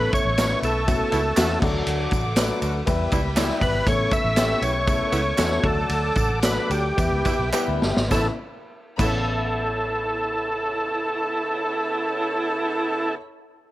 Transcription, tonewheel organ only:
Already playing: B4
0.14 C#5
0.65 A4
3.62 B4
3.88 C#5
4.13 E5
4.62 C#5
5.65 A4
6.45 B4
6.71 G4
8.12 A4
9.01 A4

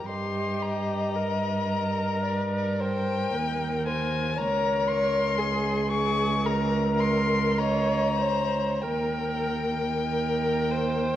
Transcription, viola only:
0.08 G4
1.15 A#4
4.37 A#4
5.39 G#4
5.92 G#4
6.45 A#4
7.59 C#5
8.20 C5
8.83 A#4
10.09 A#4
10.71 C5

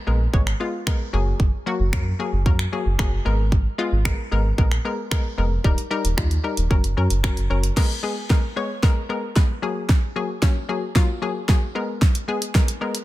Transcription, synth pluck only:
0.07 G#3 B3 A#4
0.33 G#3 B3 C#5
0.60 G#3 B3 F4
0.87 G#3 B3 A#4
1.13 F#3 A#3 G#4
1.66 F#3 A#3 F#4
1.93 F#3 A#3 A#4
2.19 F#3 A#3 G#4
2.46 F#3 A#3 A#4
2.72 F#3 A#3 G#4
2.99 F#3 A#3 G#4
3.25 G#3 B3 A#4
3.78 G#3 B3 F4
4.05 G#3 B3 A#4
4.31 G#3 B3 A#4
4.58 G#3 B3 A#4
4.85 G#3 B3 A#4
5.11 G#3 B3 A#4
5.38 G#3 B3 A#4
5.64 G3 D#4 A#4
5.91 G3 D#4 A#4
6.17 G3 D#4 F4
6.44 G3 D#4 A#4
6.70 F#3 C#4 A#4
6.97 F#3 C#4 A#4
7.23 F#3 C#4 A#4
7.50 F#3 C#4 A#4
7.77 G#3 B3 A#4
8.03 G#3 B3 G#4
8.30 G#3 B3 A#4
8.56 G#3 B3 C#5
8.83 G#3 B3 A#4
9.09 G#3 B3 A#4
9.36 G#3 B3 B4
9.62 F#3 A#3 G#4
10.16 F#3 A#3 G#4
10.42 F#3 A#3 C#4
10.69 F#3 A#3 G#4
10.95 F#3 A#3 F4
11.22 F#3 A#3 G#4
11.48 F#3 A#3 G#4
11.75 G#3 B3 A#4
12.28 G#3 B3 G#4
12.54 G#3 B3 A#4
12.81 G#3 B3 A#4

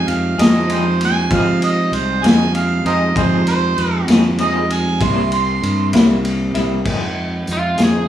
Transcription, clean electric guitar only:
0.38 C4 D#4 G#4
0.68 F3 C4 D#4 G#4
1.32 F3 C4 D#4 G#4
2.23 C4 D#4 G#4
2.86 C4 D#4 G#4
3.16 F3 C4 D#4 G#4
4.08 C4 D#4 G#4
4.39 F3 C4 D#4 G#4
5.01 C3 G3 A#3 E4
5.94 G3 A#3 E4
6.54 G3 A#3 E4
6.84 F3 C4 D#4 G#4
7.78 C4 D#4 G#4

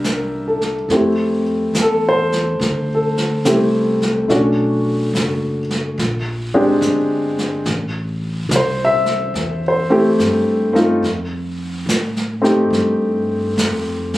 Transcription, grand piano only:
Already playing: A#3 D4 E4 G4 A#4 E5
0.06 A#4
0.48 A4
0.91 A3 C4 E4 G4
1.82 A4
2.09 C5
2.95 A4
3.45 A3 C4 E4 G4
4.28 A3 C#4 D4 F#4
6.54 G#3 C4 D4 G4
8.56 C5
8.85 E5
9.68 C5
9.90 A3 C4 E4 G4
10.73 A3 C4 D#4 F4
12.42 A3 C4 D#4 G4

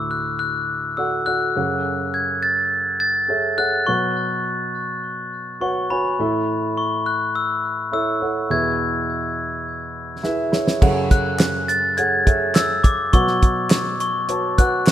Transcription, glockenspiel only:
0.11 F#6
0.39 F#6
0.97 E6
1.26 F#6
2.14 G#6
2.43 A6
3.00 A6
3.58 F#6
3.87 C#6
5.61 C#6
5.90 B5
6.78 C#6
7.06 F#6
7.35 E6
7.93 E6
8.51 G#6
11.11 F#6
11.68 A6
11.97 G#6
12.55 E6
12.84 D6
13.13 C#6
14.00 C#6
14.58 F#6

